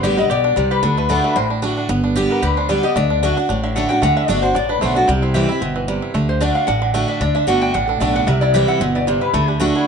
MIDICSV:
0, 0, Header, 1, 5, 480
1, 0, Start_track
1, 0, Tempo, 265722
1, 1503, Time_signature, 4, 2, 24, 8
1, 17831, End_track
2, 0, Start_track
2, 0, Title_t, "Resonator guitar played with a steel bar"
2, 0, Program_c, 0, 25
2, 73, Note_on_c, 0, 74, 88
2, 320, Note_off_c, 0, 74, 0
2, 333, Note_on_c, 0, 75, 110
2, 542, Note_off_c, 0, 75, 0
2, 561, Note_on_c, 0, 74, 105
2, 1289, Note_on_c, 0, 71, 99
2, 1293, Note_off_c, 0, 74, 0
2, 1500, Note_off_c, 0, 71, 0
2, 1511, Note_on_c, 0, 69, 84
2, 1760, Note_off_c, 0, 69, 0
2, 1770, Note_on_c, 0, 71, 104
2, 1981, Note_off_c, 0, 71, 0
2, 1991, Note_on_c, 0, 69, 85
2, 2143, Note_off_c, 0, 69, 0
2, 2156, Note_on_c, 0, 67, 75
2, 2303, Note_on_c, 0, 71, 72
2, 2306, Note_off_c, 0, 67, 0
2, 2453, Note_off_c, 0, 71, 0
2, 2460, Note_on_c, 0, 72, 96
2, 2617, Note_off_c, 0, 72, 0
2, 4174, Note_on_c, 0, 70, 82
2, 4371, Note_off_c, 0, 70, 0
2, 4378, Note_on_c, 0, 71, 90
2, 4633, Note_off_c, 0, 71, 0
2, 4641, Note_on_c, 0, 72, 76
2, 4857, Note_off_c, 0, 72, 0
2, 4872, Note_on_c, 0, 74, 83
2, 5122, Note_off_c, 0, 74, 0
2, 5134, Note_on_c, 0, 75, 104
2, 5339, Note_off_c, 0, 75, 0
2, 5346, Note_on_c, 0, 74, 92
2, 6035, Note_off_c, 0, 74, 0
2, 6567, Note_on_c, 0, 76, 92
2, 6775, Note_off_c, 0, 76, 0
2, 6782, Note_on_c, 0, 78, 100
2, 7016, Note_off_c, 0, 78, 0
2, 7023, Note_on_c, 0, 79, 105
2, 7248, Note_off_c, 0, 79, 0
2, 7275, Note_on_c, 0, 78, 102
2, 7521, Note_off_c, 0, 78, 0
2, 7529, Note_on_c, 0, 76, 88
2, 7735, Note_off_c, 0, 76, 0
2, 7735, Note_on_c, 0, 74, 79
2, 7986, Note_on_c, 0, 72, 85
2, 7993, Note_off_c, 0, 74, 0
2, 8210, Note_off_c, 0, 72, 0
2, 8217, Note_on_c, 0, 74, 112
2, 8474, Note_off_c, 0, 74, 0
2, 8481, Note_on_c, 0, 71, 80
2, 8697, Note_off_c, 0, 71, 0
2, 8708, Note_on_c, 0, 72, 97
2, 8960, Note_off_c, 0, 72, 0
2, 8961, Note_on_c, 0, 69, 81
2, 9177, Note_off_c, 0, 69, 0
2, 9188, Note_on_c, 0, 67, 76
2, 9440, Note_off_c, 0, 67, 0
2, 9442, Note_on_c, 0, 72, 83
2, 9653, Note_on_c, 0, 76, 89
2, 9658, Note_off_c, 0, 72, 0
2, 9801, Note_off_c, 0, 76, 0
2, 9809, Note_on_c, 0, 79, 79
2, 9973, Note_off_c, 0, 79, 0
2, 9973, Note_on_c, 0, 76, 82
2, 11115, Note_off_c, 0, 76, 0
2, 11363, Note_on_c, 0, 72, 93
2, 11578, Note_off_c, 0, 72, 0
2, 11582, Note_on_c, 0, 74, 94
2, 11832, Note_on_c, 0, 77, 89
2, 11837, Note_off_c, 0, 74, 0
2, 12039, Note_off_c, 0, 77, 0
2, 12047, Note_on_c, 0, 78, 117
2, 12782, Note_off_c, 0, 78, 0
2, 12789, Note_on_c, 0, 76, 99
2, 13011, Note_off_c, 0, 76, 0
2, 13024, Note_on_c, 0, 74, 81
2, 13271, Note_on_c, 0, 76, 109
2, 13278, Note_off_c, 0, 74, 0
2, 13492, Note_off_c, 0, 76, 0
2, 13505, Note_on_c, 0, 78, 95
2, 13748, Note_off_c, 0, 78, 0
2, 13755, Note_on_c, 0, 79, 105
2, 13972, Note_off_c, 0, 79, 0
2, 13979, Note_on_c, 0, 78, 106
2, 14224, Note_on_c, 0, 69, 56
2, 14235, Note_off_c, 0, 78, 0
2, 14448, Note_off_c, 0, 69, 0
2, 14450, Note_on_c, 0, 74, 90
2, 14711, Note_off_c, 0, 74, 0
2, 14734, Note_on_c, 0, 78, 115
2, 14940, Note_on_c, 0, 76, 95
2, 14944, Note_off_c, 0, 78, 0
2, 15186, Note_off_c, 0, 76, 0
2, 15193, Note_on_c, 0, 74, 100
2, 15413, Note_off_c, 0, 74, 0
2, 15428, Note_on_c, 0, 76, 96
2, 15675, Note_off_c, 0, 76, 0
2, 15682, Note_on_c, 0, 78, 113
2, 15897, Note_off_c, 0, 78, 0
2, 15922, Note_on_c, 0, 76, 83
2, 16167, Note_off_c, 0, 76, 0
2, 16182, Note_on_c, 0, 74, 88
2, 16388, Note_off_c, 0, 74, 0
2, 16397, Note_on_c, 0, 72, 82
2, 16639, Note_off_c, 0, 72, 0
2, 16646, Note_on_c, 0, 71, 90
2, 16859, Note_off_c, 0, 71, 0
2, 16874, Note_on_c, 0, 69, 93
2, 17130, Note_off_c, 0, 69, 0
2, 17130, Note_on_c, 0, 67, 89
2, 17341, Note_off_c, 0, 67, 0
2, 17363, Note_on_c, 0, 66, 74
2, 17607, Note_off_c, 0, 66, 0
2, 17628, Note_on_c, 0, 64, 80
2, 17831, Note_off_c, 0, 64, 0
2, 17831, End_track
3, 0, Start_track
3, 0, Title_t, "Five-string banjo"
3, 0, Program_c, 1, 105
3, 0, Note_on_c, 1, 55, 74
3, 0, Note_on_c, 1, 59, 52
3, 0, Note_on_c, 1, 62, 52
3, 56, Note_on_c, 1, 67, 63
3, 273, Note_off_c, 1, 55, 0
3, 314, Note_on_c, 1, 55, 66
3, 501, Note_off_c, 1, 59, 0
3, 516, Note_off_c, 1, 67, 0
3, 538, Note_on_c, 1, 67, 73
3, 791, Note_off_c, 1, 62, 0
3, 799, Note_on_c, 1, 62, 62
3, 975, Note_off_c, 1, 55, 0
3, 1014, Note_on_c, 1, 55, 72
3, 1229, Note_off_c, 1, 67, 0
3, 1281, Note_on_c, 1, 67, 53
3, 1486, Note_off_c, 1, 62, 0
3, 1494, Note_on_c, 1, 62, 63
3, 1499, Note_off_c, 1, 55, 0
3, 1502, Note_off_c, 1, 67, 0
3, 1761, Note_on_c, 1, 57, 58
3, 1962, Note_off_c, 1, 62, 0
3, 1983, Note_on_c, 1, 62, 57
3, 2222, Note_off_c, 1, 57, 0
3, 2244, Note_on_c, 1, 57, 68
3, 2437, Note_off_c, 1, 62, 0
3, 2458, Note_on_c, 1, 62, 69
3, 2693, Note_off_c, 1, 62, 0
3, 2715, Note_on_c, 1, 62, 59
3, 2901, Note_off_c, 1, 57, 0
3, 2914, Note_off_c, 1, 62, 0
3, 2935, Note_on_c, 1, 62, 62
3, 3180, Note_off_c, 1, 62, 0
3, 3202, Note_on_c, 1, 62, 51
3, 3418, Note_on_c, 1, 59, 70
3, 3424, Note_off_c, 1, 62, 0
3, 3680, Note_on_c, 1, 62, 50
3, 3905, Note_on_c, 1, 67, 55
3, 4110, Note_off_c, 1, 59, 0
3, 4162, Note_on_c, 1, 59, 60
3, 4356, Note_off_c, 1, 67, 0
3, 4378, Note_on_c, 1, 67, 66
3, 4642, Note_off_c, 1, 62, 0
3, 4649, Note_on_c, 1, 62, 60
3, 4820, Note_off_c, 1, 59, 0
3, 4863, Note_on_c, 1, 55, 80
3, 5071, Note_off_c, 1, 67, 0
3, 5126, Note_on_c, 1, 67, 55
3, 5335, Note_off_c, 1, 55, 0
3, 5342, Note_on_c, 1, 57, 82
3, 5346, Note_off_c, 1, 67, 0
3, 5598, Note_off_c, 1, 62, 0
3, 5605, Note_on_c, 1, 62, 63
3, 5805, Note_off_c, 1, 62, 0
3, 5827, Note_on_c, 1, 62, 60
3, 6033, Note_off_c, 1, 57, 0
3, 6062, Note_off_c, 1, 62, 0
3, 6083, Note_on_c, 1, 62, 56
3, 6281, Note_off_c, 1, 62, 0
3, 6303, Note_on_c, 1, 62, 73
3, 6567, Note_on_c, 1, 50, 62
3, 6789, Note_on_c, 1, 57, 70
3, 6993, Note_off_c, 1, 62, 0
3, 7041, Note_on_c, 1, 62, 50
3, 7223, Note_off_c, 1, 50, 0
3, 7238, Note_off_c, 1, 57, 0
3, 7260, Note_on_c, 1, 57, 77
3, 7501, Note_off_c, 1, 62, 0
3, 7522, Note_on_c, 1, 62, 57
3, 7721, Note_off_c, 1, 62, 0
3, 7742, Note_on_c, 1, 62, 65
3, 7952, Note_off_c, 1, 57, 0
3, 7977, Note_off_c, 1, 62, 0
3, 7999, Note_on_c, 1, 62, 64
3, 8192, Note_off_c, 1, 62, 0
3, 8214, Note_on_c, 1, 62, 71
3, 8454, Note_off_c, 1, 62, 0
3, 8476, Note_on_c, 1, 62, 62
3, 8692, Note_on_c, 1, 57, 73
3, 8921, Note_off_c, 1, 62, 0
3, 8943, Note_on_c, 1, 62, 52
3, 9163, Note_off_c, 1, 57, 0
3, 9171, Note_on_c, 1, 55, 78
3, 9175, Note_off_c, 1, 62, 0
3, 9433, Note_on_c, 1, 64, 56
3, 9649, Note_on_c, 1, 67, 58
3, 9867, Note_off_c, 1, 55, 0
3, 9890, Note_off_c, 1, 64, 0
3, 9912, Note_on_c, 1, 64, 59
3, 10146, Note_on_c, 1, 60, 62
3, 10346, Note_off_c, 1, 67, 0
3, 10400, Note_on_c, 1, 52, 69
3, 10576, Note_off_c, 1, 64, 0
3, 10625, Note_on_c, 1, 55, 70
3, 10834, Note_off_c, 1, 60, 0
3, 10881, Note_on_c, 1, 64, 53
3, 11059, Note_off_c, 1, 52, 0
3, 11091, Note_off_c, 1, 55, 0
3, 11098, Note_on_c, 1, 57, 76
3, 11104, Note_off_c, 1, 64, 0
3, 11579, Note_on_c, 1, 62, 59
3, 11791, Note_off_c, 1, 57, 0
3, 11813, Note_off_c, 1, 62, 0
3, 11835, Note_on_c, 1, 62, 52
3, 12039, Note_off_c, 1, 62, 0
3, 12060, Note_on_c, 1, 62, 69
3, 12316, Note_on_c, 1, 50, 68
3, 12541, Note_on_c, 1, 57, 71
3, 12752, Note_off_c, 1, 62, 0
3, 12807, Note_on_c, 1, 62, 55
3, 12977, Note_off_c, 1, 50, 0
3, 13013, Note_off_c, 1, 62, 0
3, 13034, Note_on_c, 1, 62, 64
3, 13232, Note_off_c, 1, 57, 0
3, 13265, Note_off_c, 1, 62, 0
3, 13287, Note_on_c, 1, 62, 60
3, 13490, Note_off_c, 1, 62, 0
3, 13512, Note_on_c, 1, 62, 62
3, 13751, Note_off_c, 1, 62, 0
3, 13773, Note_on_c, 1, 62, 56
3, 13974, Note_off_c, 1, 62, 0
3, 13996, Note_on_c, 1, 62, 75
3, 14230, Note_off_c, 1, 62, 0
3, 14251, Note_on_c, 1, 62, 62
3, 14477, Note_on_c, 1, 57, 76
3, 14713, Note_off_c, 1, 62, 0
3, 14735, Note_on_c, 1, 62, 53
3, 14947, Note_off_c, 1, 57, 0
3, 14951, Note_off_c, 1, 62, 0
3, 14954, Note_on_c, 1, 55, 77
3, 15212, Note_on_c, 1, 64, 60
3, 15433, Note_on_c, 1, 67, 59
3, 15638, Note_off_c, 1, 55, 0
3, 15670, Note_off_c, 1, 64, 0
3, 15692, Note_on_c, 1, 64, 59
3, 15911, Note_on_c, 1, 60, 66
3, 16118, Note_off_c, 1, 67, 0
3, 16171, Note_on_c, 1, 52, 58
3, 16345, Note_off_c, 1, 64, 0
3, 16388, Note_on_c, 1, 55, 71
3, 16597, Note_off_c, 1, 60, 0
3, 16641, Note_on_c, 1, 64, 53
3, 16825, Note_off_c, 1, 52, 0
3, 16857, Note_off_c, 1, 55, 0
3, 16864, Note_off_c, 1, 64, 0
3, 16864, Note_on_c, 1, 57, 80
3, 17129, Note_on_c, 1, 62, 53
3, 17326, Note_off_c, 1, 62, 0
3, 17348, Note_on_c, 1, 62, 59
3, 17553, Note_off_c, 1, 57, 0
3, 17593, Note_off_c, 1, 62, 0
3, 17615, Note_on_c, 1, 62, 58
3, 17821, Note_off_c, 1, 62, 0
3, 17831, End_track
4, 0, Start_track
4, 0, Title_t, "Steel-string acoustic guitar"
4, 0, Program_c, 2, 25
4, 0, Note_on_c, 2, 43, 91
4, 65, Note_on_c, 2, 50, 77
4, 67, Note_on_c, 2, 55, 76
4, 83, Note_on_c, 2, 59, 91
4, 89, Note_on_c, 2, 67, 93
4, 304, Note_off_c, 2, 67, 0
4, 313, Note_off_c, 2, 50, 0
4, 314, Note_off_c, 2, 55, 0
4, 322, Note_off_c, 2, 59, 0
4, 326, Note_on_c, 2, 67, 54
4, 363, Note_on_c, 2, 59, 47
4, 504, Note_off_c, 2, 43, 0
4, 536, Note_off_c, 2, 67, 0
4, 554, Note_off_c, 2, 59, 0
4, 556, Note_on_c, 2, 47, 84
4, 1008, Note_off_c, 2, 47, 0
4, 1031, Note_on_c, 2, 48, 84
4, 1485, Note_off_c, 2, 48, 0
4, 1495, Note_on_c, 2, 50, 91
4, 1946, Note_off_c, 2, 50, 0
4, 1968, Note_on_c, 2, 50, 80
4, 1978, Note_on_c, 2, 57, 91
4, 1995, Note_on_c, 2, 62, 91
4, 2004, Note_on_c, 2, 66, 92
4, 2434, Note_off_c, 2, 50, 0
4, 2440, Note_off_c, 2, 57, 0
4, 2448, Note_off_c, 2, 62, 0
4, 2452, Note_on_c, 2, 45, 78
4, 2453, Note_off_c, 2, 66, 0
4, 2928, Note_on_c, 2, 50, 73
4, 2933, Note_on_c, 2, 57, 65
4, 2947, Note_on_c, 2, 62, 83
4, 2957, Note_on_c, 2, 66, 84
4, 3375, Note_off_c, 2, 45, 0
4, 3395, Note_off_c, 2, 50, 0
4, 3397, Note_off_c, 2, 57, 0
4, 3404, Note_off_c, 2, 62, 0
4, 3410, Note_off_c, 2, 66, 0
4, 3415, Note_on_c, 2, 43, 89
4, 3894, Note_on_c, 2, 50, 92
4, 3907, Note_on_c, 2, 55, 84
4, 3923, Note_on_c, 2, 59, 100
4, 3927, Note_on_c, 2, 67, 104
4, 4337, Note_off_c, 2, 43, 0
4, 4358, Note_off_c, 2, 50, 0
4, 4365, Note_off_c, 2, 55, 0
4, 4373, Note_off_c, 2, 59, 0
4, 4375, Note_off_c, 2, 67, 0
4, 4385, Note_on_c, 2, 50, 85
4, 4834, Note_off_c, 2, 50, 0
4, 4856, Note_on_c, 2, 50, 76
4, 4869, Note_on_c, 2, 55, 83
4, 4875, Note_on_c, 2, 59, 77
4, 4886, Note_on_c, 2, 67, 81
4, 5092, Note_off_c, 2, 67, 0
4, 5111, Note_off_c, 2, 50, 0
4, 5114, Note_on_c, 2, 67, 69
4, 5117, Note_off_c, 2, 55, 0
4, 5121, Note_off_c, 2, 59, 0
4, 5149, Note_on_c, 2, 59, 55
4, 5331, Note_off_c, 2, 67, 0
4, 5349, Note_off_c, 2, 59, 0
4, 5359, Note_on_c, 2, 50, 91
4, 5812, Note_off_c, 2, 50, 0
4, 5834, Note_on_c, 2, 50, 94
4, 5838, Note_on_c, 2, 57, 88
4, 5855, Note_on_c, 2, 62, 97
4, 5865, Note_on_c, 2, 66, 95
4, 6072, Note_off_c, 2, 66, 0
4, 6080, Note_off_c, 2, 50, 0
4, 6082, Note_off_c, 2, 57, 0
4, 6090, Note_off_c, 2, 62, 0
4, 6094, Note_on_c, 2, 66, 61
4, 6129, Note_on_c, 2, 62, 43
4, 6302, Note_off_c, 2, 66, 0
4, 6319, Note_off_c, 2, 62, 0
4, 6320, Note_on_c, 2, 45, 84
4, 6791, Note_on_c, 2, 50, 84
4, 6801, Note_on_c, 2, 57, 81
4, 6816, Note_on_c, 2, 62, 82
4, 6824, Note_on_c, 2, 66, 83
4, 7031, Note_off_c, 2, 66, 0
4, 7039, Note_off_c, 2, 50, 0
4, 7044, Note_off_c, 2, 57, 0
4, 7051, Note_off_c, 2, 62, 0
4, 7052, Note_on_c, 2, 66, 67
4, 7085, Note_on_c, 2, 62, 57
4, 7230, Note_off_c, 2, 45, 0
4, 7261, Note_off_c, 2, 66, 0
4, 7277, Note_off_c, 2, 62, 0
4, 7284, Note_on_c, 2, 50, 96
4, 7711, Note_off_c, 2, 50, 0
4, 7733, Note_on_c, 2, 50, 82
4, 7751, Note_on_c, 2, 57, 89
4, 7760, Note_on_c, 2, 62, 100
4, 7771, Note_on_c, 2, 66, 104
4, 7982, Note_off_c, 2, 66, 0
4, 7990, Note_off_c, 2, 50, 0
4, 7999, Note_off_c, 2, 57, 0
4, 8003, Note_off_c, 2, 62, 0
4, 8004, Note_on_c, 2, 66, 57
4, 8040, Note_on_c, 2, 62, 51
4, 8217, Note_off_c, 2, 66, 0
4, 8235, Note_off_c, 2, 62, 0
4, 8240, Note_on_c, 2, 45, 73
4, 8710, Note_on_c, 2, 50, 75
4, 8720, Note_on_c, 2, 57, 81
4, 8731, Note_on_c, 2, 62, 76
4, 8738, Note_on_c, 2, 66, 86
4, 8945, Note_off_c, 2, 66, 0
4, 8958, Note_off_c, 2, 50, 0
4, 8963, Note_off_c, 2, 57, 0
4, 8966, Note_on_c, 2, 66, 68
4, 8969, Note_off_c, 2, 62, 0
4, 9005, Note_on_c, 2, 62, 56
4, 9150, Note_off_c, 2, 45, 0
4, 9178, Note_off_c, 2, 66, 0
4, 9189, Note_on_c, 2, 48, 87
4, 9197, Note_off_c, 2, 62, 0
4, 9649, Note_on_c, 2, 52, 85
4, 9664, Note_on_c, 2, 55, 89
4, 9679, Note_on_c, 2, 60, 96
4, 9681, Note_on_c, 2, 64, 96
4, 9896, Note_off_c, 2, 64, 0
4, 9908, Note_off_c, 2, 52, 0
4, 9915, Note_off_c, 2, 55, 0
4, 9917, Note_on_c, 2, 64, 57
4, 9923, Note_off_c, 2, 60, 0
4, 9950, Note_on_c, 2, 60, 44
4, 10104, Note_off_c, 2, 48, 0
4, 10134, Note_off_c, 2, 64, 0
4, 10148, Note_on_c, 2, 47, 76
4, 10150, Note_off_c, 2, 60, 0
4, 10606, Note_off_c, 2, 47, 0
4, 10622, Note_on_c, 2, 48, 79
4, 11083, Note_off_c, 2, 48, 0
4, 11104, Note_on_c, 2, 50, 77
4, 11549, Note_off_c, 2, 50, 0
4, 11571, Note_on_c, 2, 50, 97
4, 11585, Note_on_c, 2, 57, 78
4, 11597, Note_on_c, 2, 62, 96
4, 11610, Note_on_c, 2, 66, 92
4, 12037, Note_off_c, 2, 50, 0
4, 12044, Note_off_c, 2, 57, 0
4, 12050, Note_off_c, 2, 62, 0
4, 12056, Note_off_c, 2, 66, 0
4, 12065, Note_on_c, 2, 45, 87
4, 12534, Note_on_c, 2, 50, 74
4, 12547, Note_on_c, 2, 57, 86
4, 12550, Note_on_c, 2, 62, 86
4, 12561, Note_on_c, 2, 66, 80
4, 12982, Note_off_c, 2, 45, 0
4, 12999, Note_off_c, 2, 50, 0
4, 13005, Note_off_c, 2, 57, 0
4, 13007, Note_off_c, 2, 62, 0
4, 13012, Note_off_c, 2, 66, 0
4, 13021, Note_on_c, 2, 50, 89
4, 13470, Note_off_c, 2, 50, 0
4, 13491, Note_on_c, 2, 50, 85
4, 13505, Note_on_c, 2, 57, 96
4, 13515, Note_on_c, 2, 62, 110
4, 13528, Note_on_c, 2, 66, 95
4, 13957, Note_off_c, 2, 50, 0
4, 13964, Note_off_c, 2, 57, 0
4, 13969, Note_off_c, 2, 62, 0
4, 13975, Note_off_c, 2, 66, 0
4, 13986, Note_on_c, 2, 45, 79
4, 14460, Note_on_c, 2, 50, 72
4, 14471, Note_on_c, 2, 57, 80
4, 14484, Note_on_c, 2, 62, 84
4, 14493, Note_on_c, 2, 66, 86
4, 14902, Note_off_c, 2, 45, 0
4, 14922, Note_off_c, 2, 50, 0
4, 14927, Note_off_c, 2, 57, 0
4, 14933, Note_off_c, 2, 62, 0
4, 14938, Note_off_c, 2, 66, 0
4, 14951, Note_on_c, 2, 48, 89
4, 15424, Note_on_c, 2, 52, 97
4, 15439, Note_on_c, 2, 55, 95
4, 15451, Note_on_c, 2, 60, 101
4, 15460, Note_on_c, 2, 64, 106
4, 15865, Note_off_c, 2, 48, 0
4, 15883, Note_off_c, 2, 52, 0
4, 15891, Note_off_c, 2, 55, 0
4, 15897, Note_off_c, 2, 60, 0
4, 15901, Note_off_c, 2, 64, 0
4, 15912, Note_on_c, 2, 47, 86
4, 16367, Note_off_c, 2, 47, 0
4, 16400, Note_on_c, 2, 48, 80
4, 16851, Note_off_c, 2, 48, 0
4, 16873, Note_on_c, 2, 50, 85
4, 17312, Note_off_c, 2, 50, 0
4, 17334, Note_on_c, 2, 50, 82
4, 17347, Note_on_c, 2, 57, 93
4, 17359, Note_on_c, 2, 62, 98
4, 17366, Note_on_c, 2, 66, 103
4, 17798, Note_off_c, 2, 50, 0
4, 17804, Note_off_c, 2, 57, 0
4, 17810, Note_off_c, 2, 62, 0
4, 17814, Note_off_c, 2, 66, 0
4, 17831, End_track
5, 0, Start_track
5, 0, Title_t, "Upright bass"
5, 0, Program_c, 3, 32
5, 51, Note_on_c, 3, 33, 89
5, 464, Note_off_c, 3, 33, 0
5, 535, Note_on_c, 3, 35, 82
5, 947, Note_off_c, 3, 35, 0
5, 1021, Note_on_c, 3, 36, 88
5, 1430, Note_off_c, 3, 36, 0
5, 1493, Note_on_c, 3, 38, 104
5, 2133, Note_off_c, 3, 38, 0
5, 2454, Note_on_c, 3, 33, 81
5, 3093, Note_off_c, 3, 33, 0
5, 3413, Note_on_c, 3, 31, 96
5, 4053, Note_off_c, 3, 31, 0
5, 4382, Note_on_c, 3, 38, 81
5, 5019, Note_off_c, 3, 38, 0
5, 5344, Note_on_c, 3, 38, 102
5, 5980, Note_off_c, 3, 38, 0
5, 6309, Note_on_c, 3, 33, 92
5, 6943, Note_off_c, 3, 33, 0
5, 7267, Note_on_c, 3, 38, 110
5, 7585, Note_off_c, 3, 38, 0
5, 7745, Note_on_c, 3, 31, 79
5, 8154, Note_off_c, 3, 31, 0
5, 8223, Note_on_c, 3, 33, 81
5, 8633, Note_off_c, 3, 33, 0
5, 8705, Note_on_c, 3, 35, 86
5, 9114, Note_off_c, 3, 35, 0
5, 9183, Note_on_c, 3, 36, 106
5, 9819, Note_off_c, 3, 36, 0
5, 10132, Note_on_c, 3, 31, 84
5, 10772, Note_off_c, 3, 31, 0
5, 11092, Note_on_c, 3, 38, 105
5, 11732, Note_off_c, 3, 38, 0
5, 12065, Note_on_c, 3, 33, 89
5, 12701, Note_off_c, 3, 33, 0
5, 13018, Note_on_c, 3, 38, 101
5, 13338, Note_off_c, 3, 38, 0
5, 13502, Note_on_c, 3, 31, 81
5, 13912, Note_off_c, 3, 31, 0
5, 13986, Note_on_c, 3, 33, 82
5, 14394, Note_off_c, 3, 33, 0
5, 14463, Note_on_c, 3, 35, 84
5, 14873, Note_off_c, 3, 35, 0
5, 14935, Note_on_c, 3, 36, 108
5, 15574, Note_off_c, 3, 36, 0
5, 15896, Note_on_c, 3, 31, 85
5, 16535, Note_off_c, 3, 31, 0
5, 16863, Note_on_c, 3, 38, 102
5, 17499, Note_off_c, 3, 38, 0
5, 17831, End_track
0, 0, End_of_file